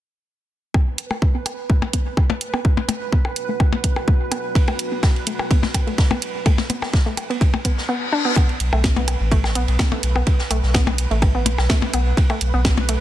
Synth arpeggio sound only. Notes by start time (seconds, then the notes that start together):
0.75 B3
1.11 A3
1.35 B3
1.70 A3
1.93 B3
2.30 A3
2.54 B3
2.89 A3
3.12 B3
3.49 A3
3.73 B3
4.08 A3
4.31 B3
4.68 A3
4.92 B3
5.27 A3
5.51 B3
5.87 A3
6.11 B3
6.46 A3
6.70 B3
7.06 A3
7.30 B3
7.65 B3
7.89 B3
8.12 D4
8.25 B3
8.36 B3
8.73 A3
8.97 B3
9.32 A3
9.55 B3
9.92 A3
10.15 B3
10.51 A3
10.74 B3
11.11 A3
11.35 B3
11.70 A3
11.94 B3
12.30 A3
12.54 B3
12.89 A3